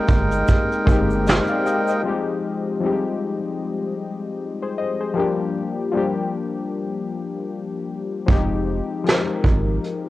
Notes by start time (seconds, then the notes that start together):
Already playing: G#3 A#3 C4 D#4 G4 A#4 D5 F5 G5
0.08 G1, kick, shaker
0.31 shaker
0.48 kick, closed hi-hat, shaker
0.72 shaker
0.86 G1 G#3 A#3 C4, kick, shaker
0.90 D#4 G4
1.10 shaker
1.27 C5 D#5, snare, closed hi-hat, shaker
1.47 D5 F5, shaker
1.66 D#5 G5, shaker
1.87 C5 D#5, shaker
1.90 shaker
2.03 F3 G3 C4
2.07 G#3 D#4 G4
2.80 F3 G3 C4
2.85 G#3 D#4 G4
4.62 G#4 C5
4.78 C5 D#5
5.01 G#4 C5
5.14 F3 G3 A#3
5.18 D4 G4
5.92 F3 G3 A#3
5.96 D4 G4
8.26 F1 F3 G#3 C4, kick, closed hi-hat
8.30 D#4 G4
9.04 F3 G#3 C4, closed hi-hat
9.09 D#4 A#4, snare
9.44 G#1, kick
9.84 closed hi-hat